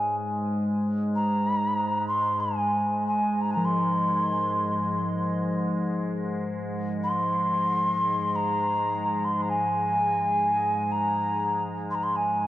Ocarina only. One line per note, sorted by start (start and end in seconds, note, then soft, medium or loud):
0.00 0.14 G#5 medium
1.15 2.07 A#5 medium
2.08 2.41 C6 medium
2.40 3.06 G#5 medium
3.06 3.42 G#5 medium
3.41 3.52 A#5 medium
3.51 3.54 G#5 medium
3.51 3.66 A#5 medium
3.65 5.55 C6 medium
7.03 8.37 C6 medium
8.35 9.26 A#5 medium
9.24 9.43 C6 medium
9.42 9.51 A#5 medium
9.49 10.93 G#5 medium
10.91 11.62 A#5 medium
11.90 11.96 C6 medium
11.94 12.04 A#5 medium
12.03 12.17 C6 medium
12.15 12.47 G#5 medium